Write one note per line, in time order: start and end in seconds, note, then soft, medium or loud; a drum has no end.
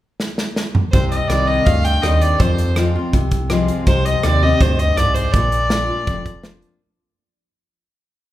0.20 snare medium
0.38 snare medium
0.56 snare medium
0.75 mid tom loud
0.92 1.22 C2 medium
0.92 1.63 C3 medium
0.92 1.09 C5 medium
0.92 kick loud
0.92 closed hi-hat medium
1.10 1.29 D#5 medium
1.10 closed hi-hat medium
1.28 1.61 C2 medium
1.28 1.64 D#3 soft
1.28 1.65 G3 medium
1.28 1.65 C4 medium
1.28 1.48 D5 medium
1.28 cross-stick loud
1.28 closed hi-hat medium
1.32 1.66 G4 medium
1.47 1.67 D#5 medium
1.65 1.98 D2 medium
1.65 2.36 G2 medium
1.65 1.86 F5 medium
1.65 kick medium
1.65 closed hi-hat medium
1.85 2.04 G5 medium
1.85 closed hi-hat medium
2.02 2.34 D#2 medium
2.02 2.38 D#3 medium
2.02 2.38 G3 medium
2.02 2.38 C4 medium
2.02 2.39 G4 medium
2.02 2.23 D#5 medium
2.02 cross-stick loud
2.02 closed hi-hat medium
2.21 2.41 D5 medium
2.21 closed hi-hat medium
2.39 2.97 F2 medium
2.39 3.09 F2 medium
2.39 2.76 C5 medium
2.39 kick loud
2.39 closed hi-hat medium
2.58 closed hi-hat medium
2.76 2.94 F3 medium
2.76 2.94 G#3 medium
2.76 2.95 C4 medium
2.76 2.94 F4 medium
2.76 cross-stick loud
2.76 closed hi-hat medium
2.96 3.14 C4 soft
2.96 3.13 F4 medium
3.13 3.71 C2 medium
3.13 3.83 C3 medium
3.13 kick medium
3.13 closed hi-hat medium
3.31 kick medium
3.31 closed hi-hat medium
3.50 3.85 F3 medium
3.50 3.85 G#3 medium
3.50 3.86 C4 medium
3.50 3.86 F4 medium
3.50 cross-stick loud
3.50 closed hi-hat medium
3.68 closed hi-hat medium
3.87 4.16 C2 medium
3.87 4.57 C3 medium
3.87 4.07 C5 medium
3.87 kick loud
3.87 closed hi-hat medium
4.05 4.25 D#5 medium
4.05 closed hi-hat medium
4.23 4.55 D#2 medium
4.23 4.41 D#3 soft
4.23 4.42 G3 medium
4.23 4.42 C4 medium
4.23 4.42 G4 medium
4.23 4.44 D5 medium
4.23 cross-stick loud
4.23 closed hi-hat medium
4.43 4.61 C4 soft
4.43 4.60 G4 medium
4.43 4.63 D#5 loud
4.61 4.92 D2 medium
4.61 4.95 G2 medium
4.61 4.80 C5 medium
4.61 kick loud
4.61 closed hi-hat medium
4.79 4.98 D#5 medium
4.79 closed hi-hat medium
4.97 5.28 C2 medium
4.97 5.33 G#2 medium
4.97 5.15 D5 medium
4.97 cross-stick loud
4.97 closed hi-hat medium
5.14 5.34 C5 medium
5.14 closed hi-hat medium
5.33 5.91 A#1 medium
5.33 6.04 A#2 medium
5.33 6.43 D5 medium
5.33 kick loud
5.33 closed hi-hat medium
5.52 closed hi-hat medium
5.70 5.88 F3 medium
5.70 5.88 A#3 medium
5.70 5.88 D4 medium
5.70 5.87 F4 medium
5.70 snare loud
5.70 closed hi-hat medium
5.88 6.07 D4 soft
5.88 6.06 F4 medium
6.07 6.65 F1 medium
6.07 6.77 F2 medium
6.07 kick loud
6.07 closed hi-hat medium
6.26 kick medium
6.26 closed hi-hat medium
6.44 6.78 F3 medium
6.44 6.79 A#3 medium
6.44 6.79 D4 medium
6.44 6.79 F4 medium
6.44 snare loud
6.44 closed hi-hat medium
6.62 closed hi-hat medium